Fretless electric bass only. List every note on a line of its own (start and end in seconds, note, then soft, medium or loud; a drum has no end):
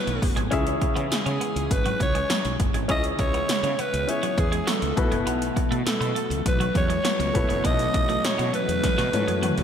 0.07 0.18 B1 medium
0.23 0.33 F#1 medium
0.37 0.48 G#1 medium
0.52 0.74 C#2 medium
0.96 1.07 C#3 loud
1.11 muted fretless electric bass stroke soft
1.26 1.37 C#3 medium
1.56 1.67 C#2 medium
1.71 1.93 G#1 loud
2.00 2.22 C#2 medium
2.45 2.56 B1 medium
2.60 2.71 F#1 medium
2.75 2.86 G#1 medium
2.89 3.12 C#2 loud
3.19 3.41 C#2 loud
3.49 muted fretless electric bass stroke soft
3.63 3.74 C#3 loud
3.94 4.05 C#2 medium
4.38 4.60 E2 loud
4.82 4.93 C#2 medium
4.97 5.08 B1 loud
5.12 5.23 F#1 medium
5.27 5.49 B1 medium
5.72 5.83 B2 loud
5.87 muted fretless electric bass stroke soft
6.01 6.12 B2 loud
6.30 6.42 C#2 medium
6.46 6.68 B1 loud
6.75 6.98 E2 medium
7.20 7.31 C#2 medium
7.35 7.46 E1 medium
7.49 7.60 F#1 medium
7.65 7.87 B1 loud
7.94 8.16 B1 loud
8.24 muted fretless electric bass stroke soft
8.39 8.50 B2 loud
8.69 8.80 E2 medium
8.98 9.09 B2 loud
9.13 9.24 G#2 medium
9.28 9.50 F#2 medium
9.58 9.63 E2 medium